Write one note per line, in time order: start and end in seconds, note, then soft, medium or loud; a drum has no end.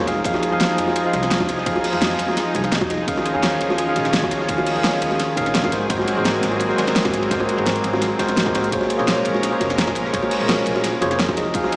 0.00 0.24 F2 medium
0.07 0.21 F3 medium
0.07 3.05 F3 medium
0.07 0.21 D#4 medium
0.07 5.68 D#4 medium
0.07 3.05 G#4 medium
0.07 0.21 G#4 medium
0.07 0.21 F5 loud
0.07 snare medium
0.07 closed hi-hat medium
0.07 ride medium
0.24 0.33 F2 loud
0.24 0.49 F3 medium
0.24 0.50 D#4 medium
0.24 0.50 G#4 medium
0.24 0.50 F5 loud
0.24 kick loud
0.24 closed hi-hat medium
0.24 ride medium
0.34 snare medium
0.34 high bongo loud
0.42 snare soft
0.42 closed hi-hat medium
0.42 ride medium
0.51 0.77 F2 loud
0.51 1.02 F3 medium
0.51 1.02 D#4 medium
0.51 1.03 G#4 medium
0.51 1.03 F5 loud
0.60 snare loud
0.60 closed hi-hat medium
0.60 ride medium
0.60 high bongo medium
0.78 1.04 F2 loud
0.78 closed hi-hat medium
0.78 ride medium
0.88 snare soft
0.88 high bongo medium
0.96 closed hi-hat medium
0.96 ride medium
1.04 1.64 F3 medium
1.04 1.64 D#4 medium
1.04 1.65 G#4 medium
1.04 1.65 F5 loud
1.13 1.39 C2 loud
1.13 snare soft
1.13 closed hi-hat medium
1.13 ride medium
1.13 high bongo medium
1.23 snare medium
1.23 closed hi-hat soft
1.31 snare loud
1.31 closed hi-hat medium
1.31 ride loud
1.40 1.65 F2 medium
1.40 kick loud
1.40 high bongo loud
1.49 snare soft
1.49 closed hi-hat medium
1.49 ride medium
1.58 snare soft
1.66 1.75 F2 loud
1.66 1.90 F3 medium
1.66 1.91 D#4 medium
1.66 1.91 G#4 medium
1.66 1.91 F5 medium
1.66 kick loud
1.66 closed hi-hat medium
1.66 ride medium
1.76 high bongo loud
1.84 snare soft
1.84 closed hi-hat medium
1.84 open hi-hat medium
1.92 2.18 F2 loud
1.92 2.52 F3 medium
1.92 2.53 D#4 medium
1.92 2.53 G#4 medium
1.92 2.54 F5 medium
1.92 ride soft
2.01 snare loud
2.01 closed hi-hat medium
2.01 ride loud
2.01 high bongo medium
2.11 ride soft
2.19 2.45 F2 loud
2.19 closed hi-hat medium
2.19 ride medium
2.28 snare soft
2.28 high bongo medium
2.37 snare soft
2.37 closed hi-hat medium
2.37 ride medium
2.54 2.80 C2 loud
2.54 2.61 F3 loud
2.54 2.62 D#4 medium
2.54 2.62 G#4 medium
2.54 2.62 G#5 loud
2.54 kick medium
2.54 closed hi-hat medium
2.54 ride medium
2.54 high bongo medium
2.63 2.72 F3 medium
2.63 2.72 D#4 medium
2.63 2.72 G#4 medium
2.63 2.72 F5 medium
2.63 snare medium
2.63 closed hi-hat soft
2.72 snare loud
2.72 closed hi-hat medium
2.72 ride medium
2.81 3.06 F2 medium
2.81 kick loud
2.81 snare soft
2.81 ride soft
2.81 high bongo loud
2.89 3.05 F3 medium
2.89 3.06 D#4 medium
2.89 3.06 G#4 medium
2.89 3.06 D#5 loud
2.89 snare medium
2.89 closed hi-hat medium
2.89 ride medium
3.07 3.16 D#2 loud
3.07 3.32 D#3 loud
3.07 5.70 F3 medium
3.07 5.70 C#4 medium
3.07 3.32 C#4 medium
3.07 8.68 G#4 loud
3.07 3.32 G#4 medium
3.07 3.33 F5 loud
3.07 kick loud
3.07 closed hi-hat medium
3.07 ride medium
3.16 snare medium
3.16 high bongo loud
3.25 snare soft
3.25 closed hi-hat medium
3.25 ride medium
3.33 3.59 D#2 loud
3.33 3.84 D#3 medium
3.33 3.85 C#4 medium
3.33 3.85 G#4 medium
3.33 3.86 F5 loud
3.43 snare loud
3.43 closed hi-hat medium
3.43 ride loud
3.43 high bongo medium
3.61 3.86 D#2 loud
3.61 closed hi-hat medium
3.61 ride medium
3.70 snare soft
3.70 high bongo medium
3.78 closed hi-hat medium
3.78 ride medium
3.86 4.46 D#3 medium
3.86 4.47 C#4 medium
3.86 4.47 G#4 medium
3.86 4.47 F5 medium
3.95 4.21 A#1 loud
3.95 snare soft
3.95 closed hi-hat medium
3.95 ride medium
3.95 high bongo medium
4.05 snare medium
4.05 closed hi-hat soft
4.13 snare loud
4.13 closed hi-hat medium
4.13 ride medium
4.23 4.47 D#2 medium
4.23 kick loud
4.23 high bongo medium
4.31 snare soft
4.31 closed hi-hat medium
4.31 ride medium
4.40 snare soft
4.48 4.57 D#2 loud
4.48 4.73 D#3 medium
4.48 4.73 C#4 medium
4.48 4.74 G#4 medium
4.48 4.74 F5 medium
4.48 kick loud
4.48 closed hi-hat medium
4.48 ride medium
4.58 high bongo loud
4.66 snare soft
4.66 closed hi-hat medium
4.66 open hi-hat medium
4.74 5.00 D#2 loud
4.74 5.35 D#3 medium
4.74 5.35 C#4 medium
4.74 5.36 G#4 medium
4.74 5.36 F5 medium
4.74 ride soft
4.84 snare loud
4.84 closed hi-hat medium
4.84 ride medium
4.84 high bongo medium
4.93 ride soft
5.02 5.27 D#2 loud
5.02 closed hi-hat medium
5.02 ride medium
5.10 snare soft
5.10 high bongo medium
5.20 snare soft
5.20 closed hi-hat medium
5.20 ride medium
5.36 5.62 A#1 loud
5.36 5.61 D#3 loud
5.36 5.61 C#4 medium
5.36 5.62 G#4 medium
5.36 5.62 F5 loud
5.36 kick medium
5.36 closed hi-hat medium
5.36 ride medium
5.36 high bongo medium
5.46 snare medium
5.46 closed hi-hat soft
5.54 snare loud
5.54 closed hi-hat loud
5.54 ride medium
5.63 5.89 G#1 medium
5.63 5.70 D#3 medium
5.63 5.70 C#4 medium
5.63 5.71 G#4 medium
5.63 5.71 F5 loud
5.63 kick loud
5.63 snare soft
5.63 ride soft
5.63 high bongo medium
5.72 8.69 F#3 medium
5.72 5.85 G#3 medium
5.72 8.69 A#3 medium
5.72 8.69 C4 medium
5.72 5.86 F#4 medium
5.72 5.86 A#4 medium
5.72 5.86 C5 medium
5.72 snare medium
5.72 closed hi-hat medium
5.72 ride medium
5.89 5.98 G#1 loud
5.89 6.14 G#3 medium
5.89 6.14 F#4 medium
5.89 6.15 A#4 medium
5.89 6.15 C5 loud
5.89 kick loud
5.89 closed hi-hat loud
5.89 ride loud
5.99 snare medium
5.99 high bongo medium
6.08 snare soft
6.08 closed hi-hat medium
6.08 ride medium
6.15 6.41 G#1 loud
6.15 6.67 G#3 medium
6.15 6.67 F#4 medium
6.15 6.68 A#4 medium
6.15 6.68 C5 loud
6.25 snare loud
6.25 closed hi-hat loud
6.25 ride loud
6.25 high bongo medium
6.43 6.68 G#1 loud
6.43 snare loud
6.43 closed hi-hat medium
6.43 ride medium
6.52 high bongo medium
6.60 closed hi-hat loud
6.60 ride medium
6.68 7.28 G#3 medium
6.68 7.29 F#4 medium
6.68 7.29 A#4 medium
6.68 7.30 C5 medium
6.68 snare soft
6.78 7.03 D#2 loud
6.78 snare loud
6.78 closed hi-hat medium
6.78 ride medium
6.78 high bongo medium
6.87 snare loud
6.87 snare medium
6.87 closed hi-hat soft
6.87 ride medium
6.95 snare loud
6.95 closed hi-hat loud
6.95 ride medium
7.05 7.30 G#1 medium
7.05 kick loud
7.05 snare loud
7.05 ride medium
7.05 high bongo medium
7.14 snare soft
7.14 closed hi-hat medium
7.23 ride medium
7.30 7.39 G#1 loud
7.30 7.55 G#3 medium
7.30 7.55 F#4 medium
7.30 7.56 A#4 medium
7.30 7.56 C5 medium
7.30 kick loud
7.30 snare loud
7.30 closed hi-hat loud
7.30 ride medium
7.40 high bongo loud
7.49 snare soft
7.49 closed hi-hat medium
7.49 ride medium
7.56 7.83 G#1 loud
7.56 8.17 G#3 medium
7.56 8.17 F#4 medium
7.56 8.18 A#4 medium
7.56 8.18 C5 medium
7.56 ride soft
7.66 snare loud
7.66 closed hi-hat loud
7.66 ride medium
7.66 high bongo medium
7.76 closed hi-hat soft
7.76 ride soft
7.84 8.09 G#1 loud
7.84 closed hi-hat medium
7.84 ride medium
7.93 snare soft
7.93 high bongo loud
8.01 snare soft
8.01 closed hi-hat medium
8.01 ride medium
8.19 8.45 G#2 medium
8.19 8.44 G#3 medium
8.19 8.44 F#4 medium
8.19 8.44 A#4 medium
8.19 8.44 C5 loud
8.19 kick medium
8.19 snare loud
8.19 closed hi-hat medium
8.19 ride medium
8.19 high bongo medium
8.29 snare medium
8.29 closed hi-hat soft
8.37 snare loud
8.37 closed hi-hat loud
8.37 ride medium
8.45 8.71 G#1 medium
8.45 8.52 G#3 medium
8.45 8.52 F#4 medium
8.45 8.53 A#4 medium
8.45 8.53 C5 medium
8.45 kick loud
8.45 snare soft
8.45 high bongo medium
8.54 8.68 G#3 medium
8.54 8.68 F#4 medium
8.54 8.68 A#4 medium
8.54 8.68 C5 medium
8.54 snare loud
8.54 closed hi-hat medium
8.54 ride medium
8.64 closed hi-hat soft
8.72 8.80 A#1 loud
8.72 11.34 G#3 medium
8.72 8.97 A#3 medium
8.72 11.34 C#4 medium
8.72 8.97 G#4 medium
8.72 11.34 A#4 medium
8.72 8.97 C5 medium
8.72 8.97 C#5 loud
8.72 kick loud
8.72 closed hi-hat medium
8.72 ride medium
8.81 snare medium
8.81 high bongo medium
8.90 closed hi-hat medium
8.90 ride medium
8.98 9.24 A#1 loud
8.98 9.49 A#3 medium
8.98 9.50 G#4 medium
8.98 9.50 C5 medium
8.98 9.51 C#5 medium
8.98 snare soft
9.07 snare loud
9.07 closed hi-hat loud
9.07 ride medium
9.07 high bongo medium
9.25 9.51 A#1 loud
9.25 closed hi-hat medium
9.25 ride medium
9.34 snare soft
9.34 high bongo medium
9.43 snare medium
9.43 closed hi-hat loud
9.43 ride medium
9.51 10.11 A#3 medium
9.51 10.11 G#4 medium
9.51 10.12 C5 medium
9.51 10.12 C#5 medium
9.60 9.86 F1 loud
9.60 kick medium
9.60 snare soft
9.60 closed hi-hat medium
9.60 ride medium
9.60 high bongo medium
9.69 snare medium
9.69 closed hi-hat soft
9.78 snare loud
9.78 closed hi-hat loud
9.78 ride medium
9.87 10.12 A#1 medium
9.87 kick loud
9.87 snare soft
9.87 high bongo loud
9.95 snare soft
9.95 closed hi-hat medium
9.95 ride medium
10.05 snare soft
10.13 10.22 A#1 loud
10.13 10.38 A#3 medium
10.13 10.38 G#4 medium
10.13 10.38 C5 medium
10.13 10.38 C#5 medium
10.13 kick loud
10.13 closed hi-hat medium
10.13 ride medium
10.23 high bongo loud
10.31 closed hi-hat medium
10.31 open hi-hat medium
10.39 10.65 A#1 loud
10.39 10.99 A#3 medium
10.39 11.00 G#4 medium
10.39 11.00 C5 medium
10.39 11.01 C#5 medium
10.39 ride soft
10.49 snare loud
10.49 closed hi-hat loud
10.49 ride loud
10.49 high bongo medium
10.59 ride soft
10.66 10.92 A#1 loud
10.66 closed hi-hat medium
10.66 ride medium
10.76 snare soft
10.76 high bongo medium
10.84 snare soft
10.84 closed hi-hat loud
10.84 ride medium
11.01 11.27 F1 loud
11.01 11.08 A#3 loud
11.01 11.09 G#4 medium
11.01 11.09 C5 medium
11.01 11.09 C#5 loud
11.01 closed hi-hat medium
11.01 ride medium
11.01 high bongo medium
11.10 11.19 A#3 medium
11.10 11.19 G#4 medium
11.10 11.19 C5 medium
11.10 11.19 C#5 medium
11.10 snare medium
11.10 closed hi-hat soft
11.19 snare loud
11.19 closed hi-hat medium
11.19 ride medium
11.29 11.53 F2 medium
11.29 kick loud
11.29 ride soft
11.29 high bongo loud
11.36 11.52 F3 medium
11.36 11.76 F3 medium
11.36 11.76 C4 medium
11.36 11.52 D#4 medium
11.36 11.76 D#4 medium
11.36 11.76 G#4 loud
11.36 11.53 G#4 medium
11.36 11.53 D#5 medium
11.36 snare medium
11.36 closed hi-hat medium
11.36 ride medium
11.54 11.63 F2 loud
11.54 11.76 F3 medium
11.54 11.76 D#4 medium
11.54 11.76 G#4 medium
11.54 11.76 F5 loud
11.54 kick loud
11.54 closed hi-hat medium
11.54 ride medium
11.64 snare medium
11.64 high bongo medium
11.72 closed hi-hat medium
11.72 ride medium